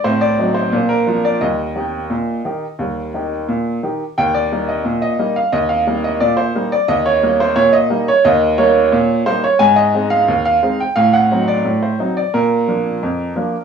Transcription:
X:1
M:2/4
L:1/16
Q:1/4=88
K:Eb
V:1 name="Upright piano"
c d2 c2 B2 d | e8- | e6 z2 | g d2 e2 e2 f |
e f2 e d c2 d | e _d2 c d e2 d | e2 _d4 c d | a e2 f2 f2 g |
f ^f2 d2 c2 d | B8 |]
V:2 name="Upright piano"
[=A,,C]2 [^F,CE]2 [B,,D]2 [=F,DF]2 | [E,,G,]2 [E,EG]2 B,,2 [E,EG]2 | [E,,G,]2 [E,EG]2 B,,2 [E,EG]2 | E,,2 [G,B,E]2 B,,2 [G,B,E]2 |
E,,2 [G,B,E]2 B,,2 [G,B,E]2 | E,,2 [G,B,E]2 B,,2 [G,B,E]2 | E,,2 [G,B,E]2 B,,2 [G,B,E]2 | A,,2 [A,CE]2 E,,2 [A,CE]2 |
=A,,2 [^F,CE]2 A,,2 [F,CE]2 | B,,2 [F,B,D]2 F,,2 [F,B,D]2 |]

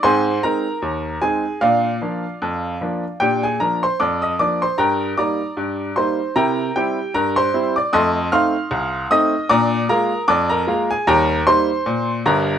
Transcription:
X:1
M:2/4
L:1/16
Q:"Swing 16ths" 1/4=76
K:Eb
V:1 name="Grand piano"
[cac']2 [Bb]4 [Aa]2 | [Fdf]8 | [Gg] [Aa] [Bb] [cc'] [dd'] [ee'] [dd'] [cc'] | [Bgb]2 [dbd']4 [cc']2 |
[Bgb]2 [Gg]2 [Bb] [cc']2 [dd'] | [ec'e']2 [fc'f']4 [ee']2 | [dbd']2 [Bb]2 [dd'] [Bb]2 [Aa] | [Bgb]2 [cc']4 [Bb]2 |]
V:2 name="Grand piano"
[A,,C]2 [A,CE]2 E,,2 [A,CE]2 | [B,,D]2 [F,B,D]2 F,,2 [F,B,D]2 | [B,,D]2 [F,B,D]2 F,,2 [F,B,D]2 | G,,2 [G,B,E]2 G,,2 [G,B,E]2 |
[C,=E]2 [G,CE]2 G,,2 [G,CE]2 | [F,,=A,]2 [A,CE]2 C,,2 [A,CE]2 | [B,,D]2 [A,B,F]2 F,,2 [A,B,F]2 | [E,,G,]2 [G,B,E]2 B,,2 [G,,,G,,]2 |]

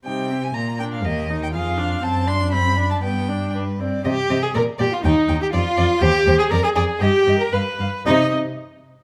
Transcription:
X:1
M:2/4
L:1/16
Q:1/4=120
K:Cm
V:1 name="Violin"
g3 a b2 g f | e3 g f4 | =a2 c'2 =b3 a | g4 z4 |
e2 e2 d2 d2 | g2 g2 d2 d2 | c2 c2 d2 d2 | e2 e2 f2 f2 |
E2 z6 |]
V:2 name="Violin"
E2 G2 F2 B2 | G2 B2 A2 F2 | c2 d2 c2 d2 | =B2 d2 B2 d2 |
G3 A B2 G F | E3 G F4 | G3 A B A A2 | G3 B =B4 |
e2 z6 |]
V:3 name="Viola"
G,2 C2 B,2 D2 | B,2 E2 F2 D2 | C2 D2 C2 D2 | =B,2 D2 D2 C2 |
G3 A B2 G F | E3 G F4 | G3 A B A A2 | G3 B =B4 |
E2 z6 |]
V:4 name="Cello" clef=bass
C,4 B,,4 | E,,4 F,,4 | ^F,,8 | G,,6 z2 |
C,2 C,2 B,,2 B,,2 | E,,2 E,,2 F,,2 F,,2 | E,,2 E,,2 F,,2 F,,2 | G,,2 G,,2 G,,2 G,,2 |
C,2 z6 |]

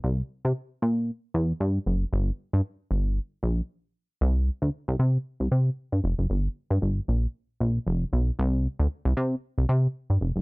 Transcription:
X:1
M:4/4
L:1/16
Q:"Swing 16ths" 1/4=115
K:Cmix
V:1 name="Analog synth bass" clef=bass
C,,2 z C, z2 B,,3 z E,,2 G,,2 ^F,,,2 | G,,,2 z G,, z2 G,,,3 z B,,,2 z4 | C,,3 D,, z C,, C,2 z C,, C,2 z G,, F,,, ^F,,, | G,,,2 z G,, G,,,2 B,,,2 z2 B,,,2 F,,,2 =B,,,2 |
C,,3 D,, z C,, C,2 z C,, C,2 z G,, F,,, ^F,,, |]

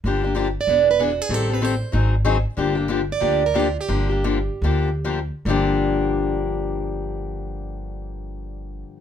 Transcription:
X:1
M:4/4
L:1/8
Q:"Swing" 1/4=172
K:Gm
V:1 name="Steel-string acoustic guitar"
z3 d2 =B ^F ^G | A =B c2 z4 | z3 d2 B F G- | G6 z2 |
z8 | z8 |]
V:2 name="Steel-string acoustic guitar"
[D,F,B,DG] [B,DG] [D,F,B,DG] z [=E,=B,D^G] z [E,B,DG] z | [E,G,CGA] [CGA] [E,G,CGA] z [E,_G,CE_A] z [E,G,CEA] z | [D,F,B,DG] [B,DG] [D,F,B,DG] z [D,F,B,DG] z [D,F,B,DG] z | [D,F,B,DG] [B,DG] [D,F,B,DG] z [D,F,B,DG] z [D,F,B,DG] z |
[G,,D,F,B,DG]8- | [G,,D,F,B,DG]8 |]
V:3 name="Upright bass" clef=bass
G,,,4 =E,,,4 | A,,,4 _A,,,4 | G,,,4 D,,4 | G,,,4 D,,4 |
G,,,8- | G,,,8 |]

